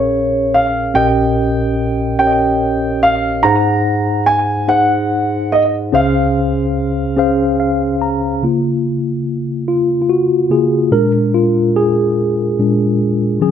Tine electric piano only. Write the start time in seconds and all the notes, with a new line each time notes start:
Already playing: A#1 A#2 C#4 G#4 A#4 C#5 F5
0.94 A#1 A#2 C#4 G4 A#4 D#5
2.19 C#4 G4 A#4 C#5
2.27 D#5
3.44 G#2 D#4 G#4 C5 F#5
4.68 D#4 G#4 C5 F#5
5.92 C#2 C#3 C#4 G#4 C5 E5
6.01 F5
7.17 C#4 G#4 C5 F5
7.60 F5
8.02 A#5
8.43 C#3 A#3 F4
9.68 F4
10.02 F4
10.09 F#4
10.50 C#3 A#3 F4 G#4
10.91 A#2 G#3 D4 A#4
11.34 F4
11.76 G#4
12.59 A#2 G#3 D4
13.40 D#3 F#3 C#4 G#4